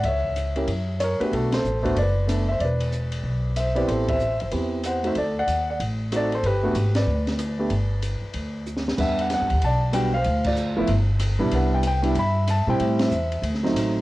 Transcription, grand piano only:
0.05 0.98 C#5 medium
0.05 1.03 E5 medium
0.56 0.67 A#3 medium
0.56 0.67 C#4 medium
0.56 0.68 E4 medium
0.56 0.68 G4 medium
1.00 1.21 A#4 medium
1.00 1.21 C#5 medium
1.19 1.61 A3 medium
1.19 1.62 B3 medium
1.19 1.62 D4 soft
1.19 1.35 F#4 medium
1.19 1.33 B4 medium
1.24 1.33 G4 medium
1.33 1.53 F#4 medium
1.33 1.53 A4 medium
1.54 1.84 A4 medium
1.54 1.84 C5 medium
1.82 1.94 A3 medium
1.82 1.95 B3 medium
1.82 1.95 D4 medium
1.82 1.95 F#4 medium
1.82 1.96 C5 medium
1.89 1.98 A4 medium
1.98 2.47 B4 medium
1.98 2.46 D5 medium
2.27 2.46 A3 medium
2.27 2.46 B3 soft
2.27 2.46 D4 soft
2.27 2.47 A4 medium
2.49 2.61 C5 medium
2.49 2.61 E5 medium
2.60 3.52 D5 medium
2.65 3.54 B4 medium
3.57 3.77 C5 medium
3.57 3.77 E5 medium
3.75 4.17 B3 medium
3.75 4.17 C4 medium
3.75 4.17 E4 medium
3.75 4.18 G4 medium
3.75 3.88 B4 medium
3.75 3.88 D5 medium
3.88 4.08 A4 medium
3.88 4.07 C5 medium
4.09 4.39 C5 medium
4.09 4.38 E5 medium
4.41 4.47 C5 soft
4.41 4.46 E5 medium
4.52 5.00 B3 medium
4.52 5.00 C4 soft
4.52 5.00 E4 soft
4.52 5.00 G4 medium
4.86 5.04 C5 medium
4.86 5.05 F#5 medium
5.03 5.14 A3 medium
5.03 5.15 C4 medium
5.03 5.15 D#4 medium
5.03 5.15 F#4 medium
5.03 5.16 E5 medium
5.07 5.17 C5 medium
5.18 5.35 A4 medium
5.18 5.37 D5 medium
5.39 5.67 D5 medium
5.39 5.69 F#5 loud
5.70 5.80 D5 medium
5.70 5.80 F#5 medium
6.12 6.29 A3 medium
6.12 6.30 C4 soft
6.12 6.30 D#4 soft
6.12 6.30 F#4 medium
6.16 6.32 A4 medium
6.16 6.33 D5 medium
6.35 6.44 A4 medium
6.35 6.44 C5 medium
6.46 6.93 G4 medium
6.46 6.93 B4 medium
6.63 6.74 A3 medium
6.63 6.74 B3 medium
6.63 6.74 D4 medium
6.63 6.75 F#4 medium
6.96 8.64 B4 medium
6.96 8.63 D5 medium
7.58 7.69 A3 medium
7.58 7.70 B3 medium
7.58 7.70 D4 medium
7.58 7.70 G4 medium
8.97 9.46 G3 medium
8.97 9.46 B3 medium
8.97 9.46 D4 medium
8.97 9.59 G4 medium
8.97 9.20 E5 medium
8.97 9.20 F#5 medium
9.21 9.31 F#5 medium
9.34 9.65 F#5 medium
9.64 10.24 D5 medium
9.64 9.93 A5 loud
9.92 10.11 G3 medium
9.92 10.11 B3 medium
9.92 10.12 D4 medium
9.92 10.12 F#4 medium
9.92 10.15 G5 medium
10.14 10.75 C5 medium
10.14 10.47 F5 loud
10.46 10.87 F4 medium
10.46 10.87 D5 medium
10.77 10.88 F3 medium
10.77 10.88 A3 medium
10.77 10.88 B3 medium
10.77 10.88 E4 medium
11.39 11.81 G3 medium
11.39 11.81 B3 medium
11.39 11.82 D4 medium
11.39 11.82 E4 medium
11.54 12.14 B4 medium
11.54 11.72 F#5 medium
11.75 11.79 G5 medium
11.87 12.16 G5 medium
12.02 12.14 G3 medium
12.02 12.14 B3 medium
12.02 12.15 D4 medium
12.02 12.15 E4 medium
12.19 12.77 E5 medium
12.19 12.47 B5 loud
12.50 12.70 A5 medium
12.67 13.09 G3 medium
12.67 13.09 C4 medium
12.67 13.10 E4 medium
12.67 13.02 C5 medium
12.67 13.02 G5 medium
13.02 13.42 C5 medium
13.02 13.42 E5 medium
13.63 14.01 F#3 medium
13.63 14.01 A3 medium
13.63 14.01 C4 medium
13.63 14.01 D#4 medium

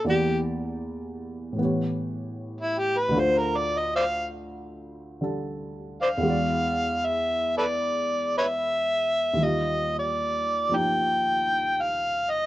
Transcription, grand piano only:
0.05 1.59 E2 soft
0.05 1.55 E3 soft
0.05 1.59 A#3 soft
0.05 1.60 G4 soft
0.05 1.60 D5 medium
1.53 3.11 A2 soft
1.53 3.12 E3 soft
1.59 3.14 B3 soft
1.59 3.15 G4 soft
1.64 3.16 C#5 soft
3.09 6.22 D2 medium
3.09 5.19 D3 medium
3.14 6.24 A3 soft
3.14 6.26 F4 soft
3.19 6.27 C5 medium
5.21 6.24 D3 soft
5.21 6.24 G3 soft
5.21 6.24 D4 soft
5.21 6.25 A4 soft
6.18 9.36 E2 medium
6.18 9.37 E3 soft
6.23 9.39 G#3 soft
6.23 9.40 F#4 soft
6.29 9.42 D5 medium
9.34 12.46 D#2 soft
9.34 12.46 D#3 soft
9.38 12.46 G3 soft
9.38 12.46 F4 soft
9.45 12.46 F5 soft
10.69 12.46 F3 soft
10.69 12.46 A#3 soft
10.69 12.46 D#4 soft
10.69 12.46 G4 soft

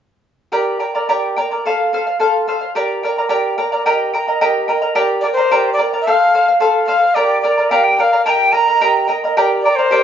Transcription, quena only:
5.21 5.27 D5 medium
5.33 5.73 C5 medium
5.73 5.80 D5 medium
6.02 6.54 F5 medium
6.86 7.16 F5 medium
7.15 7.41 D5 medium
7.42 7.71 D5 medium
7.70 7.85 F5 medium
7.84 7.97 G5 medium
7.97 8.24 F5 medium
7.97 8.01 G5 medium
8.25 8.31 A5 medium
8.30 8.54 G5 medium
8.52 9.07 A#5 medium
9.62 9.77 D5 medium
9.76 10.03 C5 medium

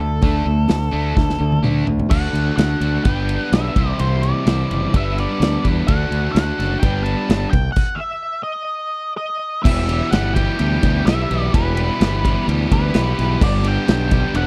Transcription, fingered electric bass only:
0.00 0.18 D2 medium
0.23 0.42 D2 medium
0.46 0.66 D2 medium
0.70 0.90 D2 medium
0.93 1.13 D2 medium
1.17 1.37 D2 medium
1.40 1.60 D2 medium
1.63 1.83 D2 medium
1.88 2.07 D2 medium
2.11 2.27 D2 medium
2.33 2.50 D2 medium
2.58 2.74 D2 medium
2.81 2.97 D2 loud
3.05 3.37 G1 medium
3.52 3.68 B1 medium
3.76 3.92 C2 medium
4.00 4.31 C2 medium
4.47 4.63 C2 medium
4.71 4.86 F#1 medium
4.94 5.25 G1 medium
5.40 5.56 D2 medium
5.65 5.81 E2 medium
5.89 6.04 D2 medium
6.11 6.27 D2 medium
6.35 6.51 D2 medium
6.59 6.75 F#1 medium
6.82 7.14 G1 medium
7.29 7.45 G1 medium
7.53 7.69 C2 medium
9.65 10.00 E1 loud
10.12 10.47 G1 loud
10.60 10.77 D2 medium
10.83 11.00 D2 medium
11.06 11.24 B1 medium
11.31 11.48 B1 medium
11.54 11.89 E1 loud
12.01 12.36 G1 loud
12.48 12.65 D2 medium
12.71 12.89 D2 medium
12.95 13.12 B1 medium
13.19 13.36 B1 medium
13.42 13.77 G1 loud
13.88 14.24 B1 medium
14.34 14.47 E1 medium

